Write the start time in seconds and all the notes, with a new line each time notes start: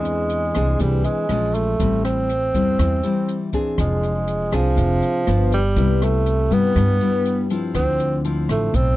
Already playing: E2 E3 G#3 C4 D4 G#4
0.05 closed hi-hat
0.30 closed hi-hat
0.55 C2 C4 D4 G#4, cross-stick, closed hi-hat
0.79 C2 E3 G3, kick, closed hi-hat
1.04 G#3, closed hi-hat
1.29 A#1 F3 G#3 C#4, cross-stick, closed hi-hat
1.54 A3, closed hi-hat
1.80 A1 A2 G3 C4 E4, kick, closed hi-hat
2.04 C4, cross-stick, closed hi-hat
2.29 closed hi-hat
2.54 E2 G3 C4 E4, kick, closed hi-hat
2.79 E2 E3, kick, cross-stick, closed hi-hat
3.03 G3 C4 E4, closed hi-hat
3.28 closed hi-hat
3.53 C4 D4 G#4, kick, closed hi-hat
3.78 F1 F3 G#3, kick, cross-stick, closed hi-hat
4.03 closed hi-hat
4.28 closed hi-hat
4.52 C2 F3 C4 D4 G#4, cross-stick, closed hi-hat
4.76 F1 C3, kick, closed hi-hat
5.02 closed hi-hat
5.27 G1 F3 B3 D4, cross-stick, closed hi-hat
5.52 G3, closed hi-hat
5.76 C2 C3 G3 B3 E4, kick, closed hi-hat
6.02 A3, cross-stick, closed hi-hat
6.26 closed hi-hat
6.51 G2 G3 B3 E4, closed hi-hat
6.76 G2, kick, cross-stick, closed hi-hat
7.01 G3 B3 E4, closed hi-hat
7.25 closed hi-hat
7.50 F3 C4 E4, closed hi-hat
7.75 D2 D3 C4, kick, cross-stick, closed hi-hat
7.99 closed hi-hat
8.25 F3 C4 E4, closed hi-hat
8.49 A1 A3, cross-stick, closed hi-hat
8.74 B1 A2 C4, kick, closed hi-hat